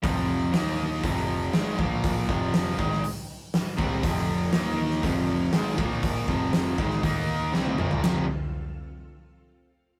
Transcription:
0.03 picked electric bass F1, overdriven electric guitar F2 C3 F3, kick, open hi-hat
0.53 picked electric bass D#2, overdriven electric guitar D#3 A#3 D#4, snare, open hi-hat
1.03 picked electric bass F1, overdriven electric guitar F2 C3 F3, kick, open hi-hat
1.53 picked electric bass G#1, overdriven electric guitar G#2 D#3 G#3, snare, open hi-hat
1.78 picked electric bass A#1, overdriven electric guitar A#2 F3 A#3, kick
2.04 kick, open hi-hat
2.28 picked electric bass F1, overdriven electric guitar F2 C3 F3, kick
2.54 snare, open hi-hat
2.77 picked electric bass G#1, overdriven electric guitar G#2 D#3 G#3, kick
2.92 snare
3.04 open hi-hat
3.54 snare, open hi-hat
3.77 picked electric bass C2, overdriven electric guitar C3 G3 C4, kick
4.03 picked electric bass F1, overdriven electric guitar F2 C3 F3, string machine C4 F4 A4 F5, kick, open hi-hat
4.52 picked electric bass D#2, overdriven electric guitar D#3 A#3 D#4, string machine D#4 A#4 D#5, snare, open hi-hat
4.91 snare
5.03 picked electric bass F1, overdriven electric guitar F2 C3 F3, string machine C4 F4 A4 F5, kick, open hi-hat
5.52 picked electric bass G#1, overdriven electric guitar G#2 D#3 G#3, snare, open hi-hat
5.78 picked electric bass A#1, overdriven electric guitar A#2 F3 A#3, string machine F4 A#4 F5, kick
6.03 kick, open hi-hat
6.28 picked electric bass F1, overdriven electric guitar F2 C3 F3, string machine C4 F4 A4 F5, kick
6.53 snare, open hi-hat
6.78 picked electric bass G#1, overdriven electric guitar G#2 D#3 G#3, kick
6.90 snare
7.03 picked electric bass D#2, overdriven electric guitar D#3 A#3 D#4, string machine D#4 A#4 D#5, kick, open hi-hat
7.53 picked electric bass C2, overdriven electric guitar C3 G3 C4, string machine C4 F4 A4 F5, snare
7.66 high tom
7.78 picked electric bass A#1, overdriven electric guitar A#2 F3 A#3, mid tom
7.91 floor tom
8.03 picked electric bass F1, overdriven electric guitar F2 C3 F3, string machine C4 F4 A4 F5, snare, ride bell

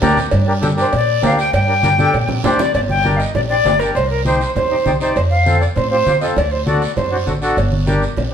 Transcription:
0.02 upright bass D2, accordion D4 G4 A#4, cowbell, high conga, low conga, low timbale, short guiro
0.17 low conga, short guiro
0.31 upright bass G2, cowbell, high conga, long guiro
0.47 accordion D4 G4 A#4
0.61 accordion D4 G4 A4, cowbell, high conga, short guiro
0.77 accordion D4 G4 A#4, flute C5, short guiro
0.93 upright bass A#2, flute D5, cowbell, high conga, long guiro
1.22 upright bass D2, accordion D4 G4 A#4, flute F5, cowbell, high conga, low timbale, short guiro
1.38 flute G5, short guiro
1.53 upright bass G2, flute G5, cowbell, high conga, long guiro
1.68 accordion D4 G4 A#4
1.83 accordion D4 G4 A#4, cowbell, high conga, short guiro
1.99 accordion D4 G4 A4, high conga, short guiro
2.13 upright bass A#2, cowbell, long guiro
2.29 low conga
2.44 upright bass D2, accordion D4 G4 C5, cowbell, low conga, low timbale, short guiro
2.59 flute D5, low conga, short guiro
2.74 upright bass G1, flute D5, cowbell, long guiro
2.89 flute G5, high conga
3.04 accordion D4 G4 A#4, high conga, short guiro
3.15 flute D#5 F5
3.20 short guiro
3.35 upright bass A#1, flute D5, cowbell, low conga, long guiro
3.48 accordion D4 G4 C5, flute D5
3.65 upright bass G1, accordion D4 G4 C5, high conga, low timbale, short guiro
3.79 accordion D4 G4 A#4, flute A#4, short guiro
3.94 upright bass C2, flute C5, cowbell, long guiro
4.09 flute A#4
4.25 accordion D#4 G4 C5, flute C5, high conga, short guiro
4.41 short guiro
4.55 upright bass D#2, flute C5, cowbell, low conga, long guiro
4.71 accordion D#4 G4 D#5
4.86 upright bass C2, accordion D#4 G4 D5, high conga, low conga, short guiro
5.00 accordion D#4 G4 D5, flute C5, short guiro
5.15 upright bass F2, flute C5, cowbell, long guiro
5.30 flute F5
5.45 accordion C4 F4 A4, high conga, short guiro
5.60 flute D5, short guiro
5.75 upright bass A2, flute C5, cowbell, low conga, long guiro
5.90 accordion C4 F4 G4, flute C5
6.06 upright bass F2, accordion C4 F4 G4, high conga, short guiro
6.20 accordion C4 F4 A4, flute D#5, short guiro
6.35 upright bass D2, flute D5, cowbell, low conga, long guiro
6.51 flute C5
6.65 accordion D4 F#4 A4, flute D5, high conga, short guiro
6.82 short guiro
6.95 upright bass F#2, flute C5, cowbell, low conga, long guiro
7.11 accordion D4 F#4 C5
7.26 upright bass A1, accordion D4 F#4 A4, high conga, short guiro
7.41 accordion D4 F#4 A4, short guiro
7.56 upright bass G1, cowbell, long guiro
7.72 high conga
7.87 accordion D4 G4 A#4, high conga, short guiro
8.02 short guiro
8.17 upright bass A#1, cowbell, low conga, long guiro

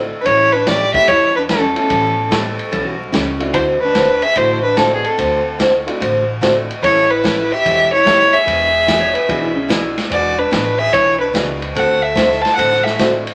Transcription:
Already playing: electric slide guitar A4
0.21 fiddle D4 B4
0.25 upright bass A1, steel-string acoustic guitar E3 G3 C#4 E4 A4, fiddle E4 C#5, kick, ride
0.53 fiddle D4 B4
0.66 steel-string acoustic guitar E3 G3 C#4 E4 A4, fiddle G4 D5, kick, snare, hi-hat pedal, ride
0.94 upright piano A3 B3 C#4 E4 G4, fiddle G4 E5, kick, ride
1.07 upright bass E2, steel-string acoustic guitar E3 G3 C#4 E4 A4, fiddle E4 C#5, kick, ride
1.36 fiddle D4 B4
1.49 steel-string acoustic guitar E3 G3 C#4 E4 A4, fiddle C#4 A4, kick, snare, hi-hat pedal, ride
1.76 upright piano A3 B3 C#4 E4 A4, fiddle C#4 A4, ride
1.90 upright bass A1, steel-string acoustic guitar E3 G3 C#4 E4 A4, kick, ride
2.31 steel-string acoustic guitar E3 G3 C#4 E4 A4, upright piano A3 B3 C#4 E4 G4, electric slide guitar A4, kick, snare, hi-hat pedal, ride
2.59 ride
2.71 upright bass B1, steel-string acoustic guitar E3 G3 C#4 E4 A4, electric slide guitar A4, kick, ride
2.85 electric slide guitar F#4
3.12 upright bass C#2, steel-string acoustic guitar E3 G3 C#4 E4 A4, electric slide guitar C#4, kick, snare, hi-hat pedal, ride
3.39 upright piano A3 C4 D4 E4 F#4, ride
3.53 upright bass D2, steel-string acoustic guitar D3 A3 C4 F#4 A4, fiddle E4 C5, kick, ride
3.81 fiddle D4 B4
3.95 steel-string acoustic guitar D3 A3 C4 F#4 A4, kick, snare, hi-hat pedal, ride
4.22 fiddle G#4 E5, ride
4.36 upright bass A1, steel-string acoustic guitar D3 A3 C4 F#4 A4, fiddle E4 C5, kick, ride
4.63 fiddle D4 B4
4.77 steel-string acoustic guitar D3 A3 C4 F#4 A4, upright piano A3 C4 D4 E4 F#4, fiddle C4 A4, kick, snare, hi-hat pedal, ride
4.95 fiddle B3 G#4
5.05 fiddle C4 A4, ride
5.17 upright bass D2, steel-string acoustic guitar D3 A3 C4 F#4 A4, kick, ride
5.59 steel-string acoustic guitar D3 A3 C4 F#4 A4, kick, snare, hi-hat pedal, ride
5.86 upright piano A3 C4 D4 E4 F#4, ride
6.00 upright bass A1, steel-string acoustic guitar D3 A3 C4 F#4 A4, kick, ride
6.41 steel-string acoustic guitar D3 A3 C4 F#4 A4, upright piano A3 C4 D4 E4 F#4, kick, snare, hi-hat pedal, ride
6.71 ride
6.82 upright bass A1, steel-string acoustic guitar E3 G3 C#4 E4 A4, fiddle E4 C#5, kick, ride
7.11 fiddle E4 B4
7.24 steel-string acoustic guitar E3 G3 C#4 E4 A4, kick, snare, hi-hat pedal, ride
7.52 fiddle G4 E5
7.65 upright bass E1, steel-string acoustic guitar E3 G3 C#4 E4 A4, kick, ride
7.93 fiddle E4 C#5
8.05 steel-string acoustic guitar E3 G3 C#4 E4 A4, upright piano A3 B3 C#4 E4 G4, kick, snare, hi-hat pedal, ride
8.33 fiddle G#4 E5
8.45 upright bass E1, steel-string acoustic guitar E3 B3 D4 G#4, kick, ride
8.87 steel-string acoustic guitar E3 B3 D4 G#4, upright piano G#3 B3 D4 E4 F#4, electric slide guitar E5, kick, snare, hi-hat pedal, ride
9.01 electric slide guitar C#5
9.14 electric slide guitar B4, ride
9.28 upright bass B1, steel-string acoustic guitar E3 B3 D4 G#4, upright piano G#3 B3 D4 E4 G#4, electric slide guitar F#4, kick, ride
9.42 electric slide guitar E4
9.55 electric slide guitar C#4
9.68 steel-string acoustic guitar E3 B3 D4 G#4, upright piano G#3 B3 D4 E4 F#4, electric slide guitar E4, kick, snare, hi-hat pedal, ride
9.98 snare, ride
10.09 upright bass E1, steel-string acoustic guitar E3 B3 D4 G#4, fiddle F#4 D5, kick, ride
10.38 fiddle D4 B4
10.51 upright bass A1, steel-string acoustic guitar E3 B3 D4 G#4, kick, snare, hi-hat pedal, ride
10.78 fiddle G#4 E5
10.92 upright bass B1, steel-string acoustic guitar E3 B3 D4 G#4, fiddle E4 C#5, kick, ride
11.20 fiddle D4 B4
11.33 upright bass C#2, steel-string acoustic guitar E3 B3 D4 G#4, upright piano G#3 B3 D4 E4 F#4, kick, snare, hi-hat pedal, ride
11.62 ride
11.74 upright bass D2, steel-string acoustic guitar D3 A3 C4 F#4 A4, fiddle A4 F#5, kick, ride
12.02 fiddle A4 E5
12.15 steel-string acoustic guitar D3 A3 C4 F#4 A4, kick, snare, hi-hat pedal, ride
12.31 snare
12.41 fiddle C5 A5, ride
12.45 snare
12.55 upright bass A1, steel-string acoustic guitar D3 A3 C4 F#4 A4, fiddle A4 F#5, kick, ride
12.72 snare
12.84 fiddle G#4 E5, snare
12.99 steel-string acoustic guitar D3 A3 C4 F#4 A4, upright piano A3 C4 D4 E4 F#4, kick, snare, hi-hat pedal, ride
13.27 ride

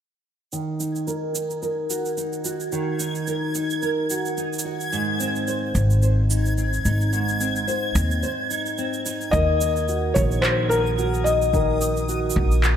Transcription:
0.52 nylon-string guitar D#3, synth texture G#6, shaker
0.80 nylon-string guitar D#4, shaker
0.96 shaker
1.07 nylon-string guitar A#4, shaker
1.35 nylon-string guitar D#4, shaker
1.51 shaker
1.62 nylon-string guitar A#4, shaker
1.90 nylon-string guitar F#4, shaker
2.05 shaker
2.17 nylon-string guitar D#4, shaker
2.33 shaker
2.45 nylon-string guitar F#4, shaker
2.60 shaker
2.72 nylon-string guitar D#3, shaker
3.00 nylon-string guitar D#4, shaker
3.15 shaker
3.27 nylon-string guitar A#4, shaker
3.55 nylon-string guitar D#4, shaker
3.70 shaker
3.82 nylon-string guitar A#4, shaker
4.10 nylon-string guitar F#4, shaker
4.25 shaker
4.37 nylon-string guitar D#4, shaker
4.53 shaker
4.59 shaker
4.65 nylon-string guitar F#4
4.80 shaker
4.92 nylon-string guitar G#2, shaker
5.20 nylon-string guitar C4, shaker
5.36 shaker
5.47 nylon-string guitar C5, shaker
5.75 upright bass G#1, nylon-string guitar C4, shaker
5.90 shaker
6.02 nylon-string guitar C5, shaker
6.30 nylon-string guitar D#4, shaker
6.46 shaker
6.58 nylon-string guitar C4, shaker
6.73 shaker
6.85 upright bass G#1, nylon-string guitar D#4, shaker
7.01 shaker
7.13 nylon-string guitar G#2, shaker
7.28 shaker
7.40 nylon-string guitar C4, shaker
7.56 shaker
7.68 nylon-string guitar C5, shaker
7.95 upright bass D#2, nylon-string guitar C4, shaker
8.11 shaker
8.23 nylon-string guitar C5, shaker
8.50 nylon-string guitar D#4, shaker
8.66 shaker
8.78 nylon-string guitar C4, shaker
8.93 shaker
9.06 nylon-string guitar D#4, shaker
9.21 shaker
9.31 upright bass D#2, nylon-string guitar D#3 A#4, felt piano D#5, synth texture D#6, kick, shaker
9.61 nylon-string guitar D#4, shaker
9.76 shaker
9.88 nylon-string guitar F#4, shaker
10.14 upright bass A#1, nylon-string guitar D#4, felt piano C#5, kick, shaker
10.31 shaker
10.42 nylon-string guitar F#4, felt piano C5, clap, shaker
10.69 nylon-string guitar D#4, felt piano A#4, shaker
10.86 shaker
10.98 nylon-string guitar F#4, shaker
11.14 shaker
11.24 nylon-string guitar D#4, felt piano D#5, shaker
11.42 shaker
11.53 nylon-string guitar D#3 A#4, kick, shaker
11.81 nylon-string guitar D#4, shaker
11.97 shaker
12.09 nylon-string guitar F#4, shaker
12.30 shaker
12.36 upright bass A#1, nylon-string guitar D#4, kick
12.51 shaker
12.64 nylon-string guitar F#4, clap, shaker

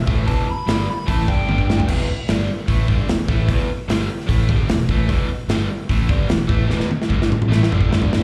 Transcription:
0.07 fingered electric bass A1, overdriven electric guitar A2 E3 A3, kick
0.27 fingered electric bass E1, overdriven electric guitar E2 B2 E3, lead electric guitar A5, kick, open hi-hat
0.47 lead electric guitar B5, muted overdriven electric guitar stroke, muted fingered electric bass stroke
0.67 fingered electric bass G1, overdriven electric guitar G2 D3 G3, snare, open hi-hat
0.90 lead electric guitar B5
1.06 fingered electric bass A1, overdriven electric guitar A2 E3 A3, lead electric guitar A5, kick, open hi-hat
1.27 fingered electric bass G1, overdriven electric guitar G2 D3 G3, lead electric guitar G5, kick
1.47 fingered electric bass G1, overdriven electric guitar G2 D3 G3, high tom
1.58 kick
1.70 snare
1.80 floor tom
1.87 fingered electric bass E1, overdriven electric guitar E2 B2 E3, kick, crash
2.08 muted overdriven electric guitar stroke, muted fingered electric bass stroke
2.28 fingered electric bass G1, overdriven electric guitar G2 D3 G3, snare, open hi-hat
2.68 fingered electric bass A1, overdriven electric guitar A2 E3 A3, kick, open hi-hat
2.87 fingered electric bass G1, overdriven electric guitar G2 D3 G3, kick
3.08 fingered electric bass E1, overdriven electric guitar E2 B2, snare, open hi-hat
3.28 fingered electric bass A1, overdriven electric guitar A2 E3 A3, kick
3.48 fingered electric bass E1, overdriven electric guitar E2 B2 E3, kick, open hi-hat
3.68 muted fingered electric bass stroke, muted overdriven electric guitar stroke
3.88 fingered electric bass G1, overdriven electric guitar G2 D3 G3, snare, open hi-hat
4.20 snare
4.27 fingered electric bass A1, overdriven electric guitar A2 E3 A3, kick, open hi-hat
4.48 fingered electric bass G1, overdriven electric guitar G2 D3 G3, kick
4.68 fingered electric bass E1, overdriven electric guitar E2 B2, snare, open hi-hat
4.88 fingered electric bass A1, overdriven electric guitar A2 E3 A3, kick
5.09 fingered electric bass E1, overdriven electric guitar E2 B2 E3, kick, open hi-hat
5.29 muted overdriven electric guitar stroke, muted fingered electric bass stroke
5.48 fingered electric bass G1, overdriven electric guitar G2 D3 G3, snare, open hi-hat
5.89 fingered electric bass A1, overdriven electric guitar A2 E3 A3, kick, open hi-hat
6.09 fingered electric bass G1, overdriven electric guitar G2 D3 G3, kick
6.29 fingered electric bass E1, overdriven electric guitar E2 B2, snare, open hi-hat
6.48 fingered electric bass A1, overdriven electric guitar A2 E3 A3, kick
6.66 fingered electric bass E1, overdriven electric guitar E2 B2 E3
6.71 snare
6.80 snare
6.89 muted fingered electric bass stroke, muted overdriven electric guitar stroke, high tom
7.02 snare
7.09 fingered electric bass G1, overdriven electric guitar G2 D3 G3, kick
7.22 snare
7.32 mid tom
7.42 mid tom
7.49 fingered electric bass A1, overdriven electric guitar A2 E3 A3, snare
7.63 snare
7.68 fingered electric bass G1, overdriven electric guitar G2 D3 G3, mid tom
7.81 kick
7.88 fingered electric bass G1, overdriven electric guitar G2 D3 G3
7.93 snare
8.02 floor tom
8.13 snare

